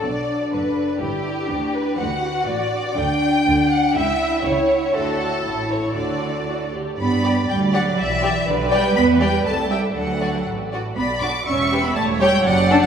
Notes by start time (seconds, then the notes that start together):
0.02 B1 B2 D4 D5
0.52 F#1 F#2 B4
1.01 G1 G2 E4 G4
1.50 D2 D4
1.74 B4
1.98 D2 D3 F#4 F#5
2.46 A1 A2 D5
2.97 D2 D3 D4 G5
3.46 D2 D3
3.71 F#5
3.96 C#2 C#3 E4 E5
4.45 C#2 C#3 C#5
4.94 D2 D3 F#4 A4
5.44 A1 A2 E4
5.69 C#5
5.95 D2 D3 F#4 D5
6.47 F#4
6.73 G4
6.98 G2 B3 D5 B5
7.24 G4 D5
7.48 D2 G3 G5
7.73 F#3 G4 D5 F#5
7.98 B1 E3 E5
8.23 G4 D5
8.47 B1 D3 B4 D5
8.71 G3 G4 D5 G5
8.95 E2 B3 B5
9.20 G3 G4 D5 G5
9.44 C2 A3 A4 A5
9.70 G3 G4 E5 G5
9.95 D2 F#3 A4 F#5
10.21 F#4 D5
10.46 A1
10.73 F#4 D5
10.96 B1 B3 D5 B5
11.21 D4 F#4 D5 D6
11.46 E1 C#4 E5 C#6
11.72 G4 B4
11.83 B3 B5
11.95 E1 A3 C#5 A5
12.19 G3 G4 C#5 G5
12.44 F#1 F#3 D5 F#5
12.70 D4 A4
12.81 F#3 F#5